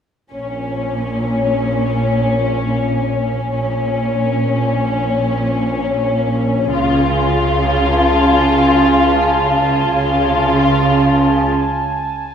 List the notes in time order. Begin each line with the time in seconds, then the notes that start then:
0.32 A#1 A#2 C#4
3.51 A#1 A#2 C#4
6.71 C#2 C#3 F4 G#5
7.51 A5
9.92 C#2 C#3 F4